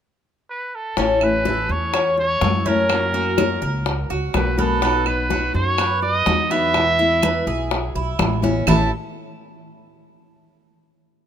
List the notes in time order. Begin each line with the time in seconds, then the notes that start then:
0.50 B4
0.75 A4
0.97 A1 E3 A3 C#4 E4, high bongo, high conga
1.21 A3 C#4 E4 B4, high conga, claves
1.45 E3 A3 C#4 E4 A4, high bongo, high conga
1.69 E2 C#5, high bongo
1.93 C#4, muted nylon-string guitar stroke, high bongo, high conga, claves
2.17 C#5, high bongo, high conga
2.41 F#2 E3 A3 C#4 E4 A4, high bongo, low bongo, high conga
2.65 A3 C#4 E4 A#4, high bongo, high conga
2.89 C#3 F#3 A#3 C#4 F#4, high bongo, high conga, claves
3.13 F#3 A#3 C#4 F#4, high conga
3.38 F#3 A#3 C#4 F#4 C#5, high bongo, high conga, claves
3.62 C#2 A#4, high bongo, high conga
3.86 muted nylon-string guitar stroke, high bongo, high conga
4.10 C#2 F#4, high bongo, high conga
4.33 B1 F#3 A#3 C#4 F#4 B4, high bongo, low bongo, high conga, claves
4.58 F#3 A#3 B3 C#4 F#4 A4, high conga
4.81 B2 F#3 B3 D#4 F#4, high bongo, high conga
5.06 F#3 B3 D#4 F#4 B4, high conga, claves
5.30 F#3 B3 D#4 F#4, high bongo, high conga
5.54 F#2 C#5, high bongo
5.78 B3, muted nylon-string guitar stroke, high bongo, high conga, claves
6.02 D#5, high bongo, high conga
6.26 E2 F#3 B3 D#4 F#4, high bongo, low bongo, high conga
6.50 F#3 B3 D#4 F#4 E5, high bongo
6.74 B2 E3 G#3 B3 E4, high bongo, high conga, claves
6.99 E3 G#3 B3 E4, high conga
7.22 E3 G#3 B3 E4 B4, high bongo, high conga, claves
7.47 B1 G#4, high bongo, high conga
7.71 muted nylon-string guitar stroke, high bongo, high conga
7.95 B1 E4, high bongo, high conga
8.19 A1 E3 G#3 B3 E4, high bongo, low bongo, high conga, claves
8.42 E3 G#3 B3 C#4 E4, high bongo, high conga
8.67 A1 A2 E3 A3 C#4 E4 A4 A5, low bongo, low conga, claves